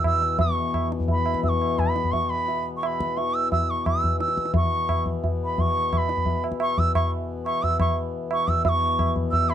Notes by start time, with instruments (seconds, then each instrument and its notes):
Already playing: harmonium E2 B2
0.04 bansuri E6, tabla na, tabla ge
0.22 tabla te
0.39 harmonium E2 B2, bansuri C#6, tabla tin, tabla ge
0.74 tabla na, tabla ge
0.92 tabla te
1.00 tabla ge
1.08 bansuri B5, tabla tin, tabla ge
1.26 tabla na
1.34 tabla ke
1.43 bansuri E6, tabla tin, tabla ge
1.49 bansuri C#6
1.61 tabla na
1.79 bansuri B5, tabla na, tabla ge
1.96 tabla te
2.04 tabla ge
2.12 bansuri C#6, tabla tin, tabla ge
2.30 bansuri B5
2.48 tabla tin
2.77 bansuri C#6
2.81 bansuri C#6, tabla na
2.86 bansuri B5
3.00 tabla ke
3.17 bansuri C#6, tabla tin
3.34 bansuri E6
3.52 bansuri E6, tabla tin, tabla ge
3.70 bansuri C#6
3.86 bansuri E6, tabla na, tabla ge
4.04 tabla ge
4.20 bansuri E6, tabla te
4.28 tabla te
4.37 tabla ke
4.45 tabla te
4.54 harmonium E2 B2, bansuri C#6, tabla tin, tabla ge
4.89 tabla na, tabla ge
5.06 tabla ge
5.24 tabla tin, tabla ge
5.45 bansuri B5
5.58 bansuri C#6, tabla tin, tabla ge
5.93 bansuri C#6, tabla na, tabla ge
5.98 bansuri B5
6.09 tabla te
6.17 tabla ge
6.26 tabla tin, tabla ge
6.44 tabla na
6.52 tabla ke
6.60 bansuri C#6, tabla na
6.78 bansuri E6, tabla tin, tabla ge
6.95 bansuri C#6, tabla na, tabla ge
7.46 bansuri C#6, tabla na
7.63 bansuri E6, tabla tin, tabla ge
7.80 bansuri C#6, tabla na, tabla ge
8.31 bansuri C#6, tabla na
8.48 bansuri E6, tabla tin, tabla ge
8.64 harmonium E2 B2, bansuri E6, tabla tin, tabla ge
8.69 bansuri C#6
8.99 tabla na, tabla ge
9.16 tabla ge
9.31 bansuri E6, tabla tin, tabla ge
9.50 bansuri B5, tabla na